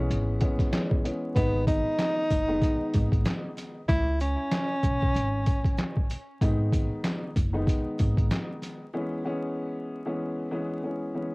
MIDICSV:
0, 0, Header, 1, 5, 480
1, 0, Start_track
1, 0, Tempo, 631579
1, 1033, Time_signature, 4, 2, 24, 8
1, 8624, End_track
2, 0, Start_track
2, 0, Title_t, "Tenor saxophone"
2, 0, Program_c, 0, 66
2, 1030, Note_on_c, 0, 59, 99
2, 1247, Note_off_c, 0, 59, 0
2, 1274, Note_on_c, 0, 63, 106
2, 2443, Note_off_c, 0, 63, 0
2, 2952, Note_on_c, 0, 64, 105
2, 3168, Note_off_c, 0, 64, 0
2, 3199, Note_on_c, 0, 61, 102
2, 4502, Note_off_c, 0, 61, 0
2, 8624, End_track
3, 0, Start_track
3, 0, Title_t, "Upright piano"
3, 0, Program_c, 1, 0
3, 0, Note_on_c, 1, 52, 90
3, 0, Note_on_c, 1, 56, 81
3, 0, Note_on_c, 1, 59, 81
3, 0, Note_on_c, 1, 61, 101
3, 284, Note_off_c, 1, 52, 0
3, 286, Note_off_c, 1, 56, 0
3, 288, Note_off_c, 1, 59, 0
3, 290, Note_off_c, 1, 61, 0
3, 306, Note_on_c, 1, 52, 88
3, 310, Note_on_c, 1, 56, 82
3, 313, Note_on_c, 1, 59, 83
3, 316, Note_on_c, 1, 61, 94
3, 533, Note_off_c, 1, 52, 0
3, 535, Note_off_c, 1, 56, 0
3, 536, Note_off_c, 1, 59, 0
3, 538, Note_off_c, 1, 61, 0
3, 547, Note_on_c, 1, 52, 70
3, 551, Note_on_c, 1, 56, 64
3, 554, Note_on_c, 1, 59, 63
3, 558, Note_on_c, 1, 61, 82
3, 773, Note_off_c, 1, 52, 0
3, 775, Note_off_c, 1, 56, 0
3, 777, Note_off_c, 1, 59, 0
3, 779, Note_off_c, 1, 61, 0
3, 789, Note_on_c, 1, 52, 74
3, 793, Note_on_c, 1, 56, 69
3, 796, Note_on_c, 1, 59, 71
3, 800, Note_on_c, 1, 61, 84
3, 1014, Note_off_c, 1, 52, 0
3, 1016, Note_off_c, 1, 56, 0
3, 1018, Note_off_c, 1, 59, 0
3, 1020, Note_off_c, 1, 61, 0
3, 1029, Note_on_c, 1, 51, 89
3, 1033, Note_on_c, 1, 56, 77
3, 1036, Note_on_c, 1, 59, 81
3, 1040, Note_on_c, 1, 63, 101
3, 1701, Note_off_c, 1, 51, 0
3, 1703, Note_off_c, 1, 56, 0
3, 1705, Note_off_c, 1, 59, 0
3, 1707, Note_off_c, 1, 63, 0
3, 1882, Note_on_c, 1, 51, 89
3, 1886, Note_on_c, 1, 56, 88
3, 1890, Note_on_c, 1, 59, 86
3, 1893, Note_on_c, 1, 63, 105
3, 2875, Note_off_c, 1, 51, 0
3, 2877, Note_off_c, 1, 56, 0
3, 2879, Note_off_c, 1, 59, 0
3, 2880, Note_off_c, 1, 63, 0
3, 4871, Note_on_c, 1, 51, 90
3, 4874, Note_on_c, 1, 56, 78
3, 4878, Note_on_c, 1, 59, 78
3, 4882, Note_on_c, 1, 63, 101
3, 5542, Note_off_c, 1, 51, 0
3, 5544, Note_off_c, 1, 56, 0
3, 5545, Note_off_c, 1, 59, 0
3, 5547, Note_off_c, 1, 63, 0
3, 5723, Note_on_c, 1, 51, 86
3, 5727, Note_on_c, 1, 56, 88
3, 5731, Note_on_c, 1, 59, 85
3, 5734, Note_on_c, 1, 63, 104
3, 6715, Note_off_c, 1, 51, 0
3, 6717, Note_off_c, 1, 56, 0
3, 6719, Note_off_c, 1, 59, 0
3, 6721, Note_off_c, 1, 63, 0
3, 6792, Note_on_c, 1, 52, 95
3, 6796, Note_on_c, 1, 56, 83
3, 6800, Note_on_c, 1, 59, 84
3, 6803, Note_on_c, 1, 61, 96
3, 7016, Note_off_c, 1, 52, 0
3, 7018, Note_off_c, 1, 56, 0
3, 7020, Note_off_c, 1, 59, 0
3, 7021, Note_off_c, 1, 61, 0
3, 7028, Note_on_c, 1, 52, 87
3, 7031, Note_on_c, 1, 56, 84
3, 7035, Note_on_c, 1, 59, 87
3, 7039, Note_on_c, 1, 61, 109
3, 7592, Note_off_c, 1, 52, 0
3, 7594, Note_off_c, 1, 56, 0
3, 7595, Note_off_c, 1, 59, 0
3, 7597, Note_off_c, 1, 61, 0
3, 7642, Note_on_c, 1, 52, 92
3, 7646, Note_on_c, 1, 56, 81
3, 7650, Note_on_c, 1, 59, 81
3, 7654, Note_on_c, 1, 61, 98
3, 7965, Note_off_c, 1, 52, 0
3, 7967, Note_off_c, 1, 56, 0
3, 7969, Note_off_c, 1, 59, 0
3, 7970, Note_off_c, 1, 61, 0
3, 7988, Note_on_c, 1, 52, 92
3, 7992, Note_on_c, 1, 56, 82
3, 7996, Note_on_c, 1, 59, 81
3, 7999, Note_on_c, 1, 61, 94
3, 8214, Note_off_c, 1, 52, 0
3, 8216, Note_off_c, 1, 56, 0
3, 8217, Note_off_c, 1, 59, 0
3, 8219, Note_off_c, 1, 61, 0
3, 8230, Note_on_c, 1, 52, 72
3, 8233, Note_on_c, 1, 56, 68
3, 8237, Note_on_c, 1, 59, 64
3, 8240, Note_on_c, 1, 61, 82
3, 8455, Note_off_c, 1, 52, 0
3, 8456, Note_off_c, 1, 56, 0
3, 8458, Note_off_c, 1, 59, 0
3, 8460, Note_off_c, 1, 61, 0
3, 8471, Note_on_c, 1, 52, 77
3, 8475, Note_on_c, 1, 56, 68
3, 8478, Note_on_c, 1, 59, 71
3, 8482, Note_on_c, 1, 61, 85
3, 8624, Note_off_c, 1, 52, 0
3, 8624, Note_off_c, 1, 56, 0
3, 8624, Note_off_c, 1, 59, 0
3, 8624, Note_off_c, 1, 61, 0
3, 8624, End_track
4, 0, Start_track
4, 0, Title_t, "Upright bass"
4, 0, Program_c, 2, 32
4, 78, Note_on_c, 2, 32, 88
4, 293, Note_off_c, 2, 32, 0
4, 1034, Note_on_c, 2, 32, 101
4, 1379, Note_off_c, 2, 32, 0
4, 1755, Note_on_c, 2, 30, 86
4, 1971, Note_off_c, 2, 30, 0
4, 2239, Note_on_c, 2, 32, 94
4, 2453, Note_off_c, 2, 32, 0
4, 2955, Note_on_c, 2, 37, 103
4, 3299, Note_off_c, 2, 37, 0
4, 3675, Note_on_c, 2, 35, 87
4, 3892, Note_off_c, 2, 35, 0
4, 3919, Note_on_c, 2, 32, 90
4, 4134, Note_off_c, 2, 32, 0
4, 4876, Note_on_c, 2, 32, 103
4, 5220, Note_off_c, 2, 32, 0
4, 5596, Note_on_c, 2, 30, 89
4, 5812, Note_off_c, 2, 30, 0
4, 6080, Note_on_c, 2, 32, 97
4, 6294, Note_off_c, 2, 32, 0
4, 8624, End_track
5, 0, Start_track
5, 0, Title_t, "Drums"
5, 81, Note_on_c, 9, 42, 102
5, 157, Note_off_c, 9, 42, 0
5, 309, Note_on_c, 9, 42, 76
5, 316, Note_on_c, 9, 36, 88
5, 385, Note_off_c, 9, 42, 0
5, 392, Note_off_c, 9, 36, 0
5, 449, Note_on_c, 9, 36, 91
5, 450, Note_on_c, 9, 38, 34
5, 455, Note_on_c, 9, 42, 48
5, 525, Note_off_c, 9, 36, 0
5, 526, Note_off_c, 9, 38, 0
5, 531, Note_off_c, 9, 42, 0
5, 553, Note_on_c, 9, 38, 113
5, 558, Note_on_c, 9, 42, 93
5, 561, Note_on_c, 9, 39, 90
5, 629, Note_off_c, 9, 38, 0
5, 634, Note_off_c, 9, 42, 0
5, 637, Note_off_c, 9, 39, 0
5, 693, Note_on_c, 9, 36, 93
5, 769, Note_off_c, 9, 36, 0
5, 801, Note_on_c, 9, 42, 85
5, 877, Note_off_c, 9, 42, 0
5, 1032, Note_on_c, 9, 36, 113
5, 1033, Note_on_c, 9, 83, 61
5, 1036, Note_on_c, 9, 42, 98
5, 1108, Note_off_c, 9, 36, 0
5, 1109, Note_off_c, 9, 83, 0
5, 1112, Note_off_c, 9, 42, 0
5, 1270, Note_on_c, 9, 36, 100
5, 1272, Note_on_c, 9, 83, 76
5, 1276, Note_on_c, 9, 42, 80
5, 1346, Note_off_c, 9, 36, 0
5, 1348, Note_off_c, 9, 83, 0
5, 1352, Note_off_c, 9, 42, 0
5, 1509, Note_on_c, 9, 38, 120
5, 1510, Note_on_c, 9, 83, 53
5, 1512, Note_on_c, 9, 42, 99
5, 1517, Note_on_c, 9, 39, 97
5, 1585, Note_off_c, 9, 38, 0
5, 1586, Note_off_c, 9, 83, 0
5, 1588, Note_off_c, 9, 42, 0
5, 1593, Note_off_c, 9, 39, 0
5, 1750, Note_on_c, 9, 83, 85
5, 1752, Note_on_c, 9, 36, 88
5, 1758, Note_on_c, 9, 42, 74
5, 1826, Note_off_c, 9, 83, 0
5, 1828, Note_off_c, 9, 36, 0
5, 1834, Note_off_c, 9, 42, 0
5, 1988, Note_on_c, 9, 36, 97
5, 1988, Note_on_c, 9, 83, 48
5, 2002, Note_on_c, 9, 42, 102
5, 2064, Note_off_c, 9, 36, 0
5, 2064, Note_off_c, 9, 83, 0
5, 2078, Note_off_c, 9, 42, 0
5, 2230, Note_on_c, 9, 42, 77
5, 2230, Note_on_c, 9, 83, 68
5, 2236, Note_on_c, 9, 36, 88
5, 2306, Note_off_c, 9, 42, 0
5, 2306, Note_off_c, 9, 83, 0
5, 2312, Note_off_c, 9, 36, 0
5, 2369, Note_on_c, 9, 36, 95
5, 2376, Note_on_c, 9, 42, 50
5, 2445, Note_off_c, 9, 36, 0
5, 2452, Note_off_c, 9, 42, 0
5, 2468, Note_on_c, 9, 83, 43
5, 2473, Note_on_c, 9, 38, 116
5, 2478, Note_on_c, 9, 42, 93
5, 2481, Note_on_c, 9, 39, 88
5, 2544, Note_off_c, 9, 83, 0
5, 2549, Note_off_c, 9, 38, 0
5, 2554, Note_off_c, 9, 42, 0
5, 2557, Note_off_c, 9, 39, 0
5, 2712, Note_on_c, 9, 38, 35
5, 2712, Note_on_c, 9, 83, 76
5, 2721, Note_on_c, 9, 42, 84
5, 2788, Note_off_c, 9, 38, 0
5, 2788, Note_off_c, 9, 83, 0
5, 2797, Note_off_c, 9, 42, 0
5, 2953, Note_on_c, 9, 36, 117
5, 2953, Note_on_c, 9, 83, 60
5, 2957, Note_on_c, 9, 42, 98
5, 3029, Note_off_c, 9, 36, 0
5, 3029, Note_off_c, 9, 83, 0
5, 3033, Note_off_c, 9, 42, 0
5, 3192, Note_on_c, 9, 83, 74
5, 3197, Note_on_c, 9, 42, 83
5, 3268, Note_off_c, 9, 83, 0
5, 3273, Note_off_c, 9, 42, 0
5, 3430, Note_on_c, 9, 83, 52
5, 3431, Note_on_c, 9, 38, 120
5, 3433, Note_on_c, 9, 42, 102
5, 3439, Note_on_c, 9, 39, 99
5, 3506, Note_off_c, 9, 83, 0
5, 3507, Note_off_c, 9, 38, 0
5, 3509, Note_off_c, 9, 42, 0
5, 3515, Note_off_c, 9, 39, 0
5, 3672, Note_on_c, 9, 83, 85
5, 3673, Note_on_c, 9, 36, 92
5, 3679, Note_on_c, 9, 42, 78
5, 3748, Note_off_c, 9, 83, 0
5, 3749, Note_off_c, 9, 36, 0
5, 3755, Note_off_c, 9, 42, 0
5, 3818, Note_on_c, 9, 36, 90
5, 3894, Note_off_c, 9, 36, 0
5, 3909, Note_on_c, 9, 83, 47
5, 3925, Note_on_c, 9, 42, 99
5, 3985, Note_off_c, 9, 83, 0
5, 4001, Note_off_c, 9, 42, 0
5, 4151, Note_on_c, 9, 83, 67
5, 4153, Note_on_c, 9, 42, 77
5, 4157, Note_on_c, 9, 36, 87
5, 4227, Note_off_c, 9, 83, 0
5, 4229, Note_off_c, 9, 42, 0
5, 4233, Note_off_c, 9, 36, 0
5, 4291, Note_on_c, 9, 36, 93
5, 4299, Note_on_c, 9, 42, 48
5, 4367, Note_off_c, 9, 36, 0
5, 4375, Note_off_c, 9, 42, 0
5, 4389, Note_on_c, 9, 83, 44
5, 4397, Note_on_c, 9, 38, 110
5, 4402, Note_on_c, 9, 42, 95
5, 4405, Note_on_c, 9, 39, 90
5, 4465, Note_off_c, 9, 83, 0
5, 4473, Note_off_c, 9, 38, 0
5, 4478, Note_off_c, 9, 42, 0
5, 4481, Note_off_c, 9, 39, 0
5, 4535, Note_on_c, 9, 36, 94
5, 4611, Note_off_c, 9, 36, 0
5, 4634, Note_on_c, 9, 83, 74
5, 4642, Note_on_c, 9, 42, 85
5, 4710, Note_off_c, 9, 83, 0
5, 4718, Note_off_c, 9, 42, 0
5, 4873, Note_on_c, 9, 36, 115
5, 4875, Note_on_c, 9, 83, 59
5, 4878, Note_on_c, 9, 42, 101
5, 4949, Note_off_c, 9, 36, 0
5, 4951, Note_off_c, 9, 83, 0
5, 4954, Note_off_c, 9, 42, 0
5, 5111, Note_on_c, 9, 36, 104
5, 5115, Note_on_c, 9, 83, 75
5, 5118, Note_on_c, 9, 42, 85
5, 5187, Note_off_c, 9, 36, 0
5, 5191, Note_off_c, 9, 83, 0
5, 5194, Note_off_c, 9, 42, 0
5, 5351, Note_on_c, 9, 38, 120
5, 5353, Note_on_c, 9, 42, 100
5, 5353, Note_on_c, 9, 83, 56
5, 5359, Note_on_c, 9, 39, 100
5, 5427, Note_off_c, 9, 38, 0
5, 5429, Note_off_c, 9, 42, 0
5, 5429, Note_off_c, 9, 83, 0
5, 5435, Note_off_c, 9, 39, 0
5, 5594, Note_on_c, 9, 36, 87
5, 5594, Note_on_c, 9, 83, 88
5, 5600, Note_on_c, 9, 42, 76
5, 5670, Note_off_c, 9, 36, 0
5, 5670, Note_off_c, 9, 83, 0
5, 5676, Note_off_c, 9, 42, 0
5, 5830, Note_on_c, 9, 36, 95
5, 5832, Note_on_c, 9, 83, 50
5, 5845, Note_on_c, 9, 42, 103
5, 5906, Note_off_c, 9, 36, 0
5, 5908, Note_off_c, 9, 83, 0
5, 5921, Note_off_c, 9, 42, 0
5, 6072, Note_on_c, 9, 42, 76
5, 6072, Note_on_c, 9, 83, 66
5, 6078, Note_on_c, 9, 36, 88
5, 6148, Note_off_c, 9, 42, 0
5, 6148, Note_off_c, 9, 83, 0
5, 6154, Note_off_c, 9, 36, 0
5, 6211, Note_on_c, 9, 36, 94
5, 6217, Note_on_c, 9, 42, 49
5, 6287, Note_off_c, 9, 36, 0
5, 6293, Note_off_c, 9, 42, 0
5, 6310, Note_on_c, 9, 83, 46
5, 6314, Note_on_c, 9, 38, 110
5, 6320, Note_on_c, 9, 42, 96
5, 6323, Note_on_c, 9, 39, 88
5, 6386, Note_off_c, 9, 83, 0
5, 6390, Note_off_c, 9, 38, 0
5, 6396, Note_off_c, 9, 42, 0
5, 6399, Note_off_c, 9, 39, 0
5, 6552, Note_on_c, 9, 38, 35
5, 6554, Note_on_c, 9, 83, 75
5, 6561, Note_on_c, 9, 42, 82
5, 6628, Note_off_c, 9, 38, 0
5, 6630, Note_off_c, 9, 83, 0
5, 6637, Note_off_c, 9, 42, 0
5, 8624, End_track
0, 0, End_of_file